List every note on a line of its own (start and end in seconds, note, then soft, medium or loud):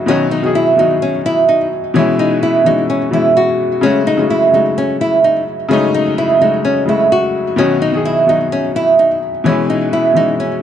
0.00 0.11 C#3 loud
0.00 0.08 F#3 medium
0.00 0.11 G#3 medium
0.00 0.10 A3 medium
0.00 0.10 F#4 medium
0.06 0.40 B2 loud
0.06 0.41 D#3 medium
0.06 0.42 F#3 loud
0.06 0.27 C#4 loud
0.06 0.42 D#4 medium
0.11 0.43 F#4 loud
0.31 0.50 D#4 medium
0.42 0.75 B2 medium
0.42 0.76 D#3 medium
0.42 0.76 F#3 medium
0.42 0.77 D#4 medium
0.46 0.78 G#4 medium
0.55 0.74 E4 medium
0.76 1.65 B2 medium
0.76 1.66 D#3 medium
0.76 1.67 F#3 medium
0.76 0.97 D#4 medium
0.76 1.67 D#4 medium
0.81 1.68 F#4 medium
1.02 1.20 C#4 loud
1.26 1.44 E4 medium
1.49 1.67 D#4 medium
1.94 2.61 B2 loud
1.94 2.61 E3 loud
1.94 2.62 G#3 medium
1.94 2.14 C#4 medium
1.94 2.63 C#4 medium
1.99 2.63 E4 loud
2.19 2.38 D#4 medium
2.43 2.61 E4 medium
2.64 3.09 B2 medium
2.64 3.09 E3 medium
2.64 3.10 G#3 medium
2.64 3.11 C#4 medium
2.64 2.85 D#4 medium
2.68 3.11 F#4 medium
2.90 3.08 C#4 medium
3.11 3.78 B2 medium
3.11 3.78 E3 medium
3.11 3.79 G#3 medium
3.11 3.80 C#4 medium
3.11 3.32 E4 medium
3.15 3.80 E4 medium
3.37 3.81 F#4 medium
3.81 4.16 C#3 loud
3.81 4.16 F#3 medium
3.81 4.17 G#3 medium
3.81 4.17 A3 medium
3.81 4.02 C#4 loud
3.86 4.18 F#4 loud
4.07 4.25 D#4 loud
4.17 4.50 C#3 medium
4.17 4.51 F#3 medium
4.17 4.52 G#3 medium
4.17 4.52 A3 medium
4.22 4.53 F#4 medium
4.30 4.49 E4 medium
4.51 5.40 C#3 medium
4.51 5.41 F#3 medium
4.51 5.41 G#3 medium
4.51 5.42 A3 medium
4.51 4.72 D#4 medium
4.56 5.43 F#4 medium
4.78 4.96 C#4 loud
5.01 5.19 E4 medium
5.24 5.42 D#4 medium
5.69 6.36 C#3 loud
5.69 6.36 F#3 medium
5.69 6.37 G#3 medium
5.69 6.37 A3 loud
5.69 5.89 C#4 loud
5.73 6.38 D#4 loud
5.94 6.13 D#4 medium
6.18 6.36 E4 medium
6.39 6.84 C#3 medium
6.39 6.85 F#3 medium
6.39 6.85 G#3 medium
6.39 6.86 A3 medium
6.39 6.60 D#4 medium
6.44 6.87 F#4 medium
6.65 6.83 C#4 medium
6.86 7.53 C#3 medium
6.86 7.53 F#3 medium
6.86 7.54 G#3 medium
6.86 7.54 A3 medium
6.86 7.07 E4 medium
6.90 7.55 F#4 medium
7.12 7.56 F#4 medium
7.56 7.90 B2 loud
7.56 7.91 D#3 medium
7.56 7.92 F#3 loud
7.56 7.77 C#4 loud
7.56 7.92 D#4 medium
7.61 7.93 F#4 loud
7.82 8.00 D#4 medium
7.92 8.25 B2 medium
7.92 8.26 D#3 medium
7.92 8.26 F#3 medium
7.92 8.27 D#4 medium
7.96 8.28 G#4 medium
8.05 8.24 E4 medium
8.26 9.15 B2 medium
8.26 9.16 D#3 medium
8.26 9.17 F#3 medium
8.26 8.47 D#4 medium
8.26 9.17 D#4 medium
8.31 9.18 F#4 medium
8.52 8.70 C#4 loud
8.76 8.94 E4 medium
8.99 9.17 D#4 medium
9.44 10.11 B2 loud
9.44 10.11 E3 loud
9.44 10.12 G#3 medium
9.44 9.64 C#4 medium
9.44 10.13 C#4 medium
9.49 10.13 E4 loud
9.70 9.88 D#4 medium
9.93 10.11 E4 medium
10.14 10.59 B2 medium
10.14 10.59 E3 medium
10.14 10.60 G#3 medium
10.14 10.61 C#4 medium
10.14 10.35 D#4 medium
10.18 10.61 F#4 medium
10.40 10.58 C#4 medium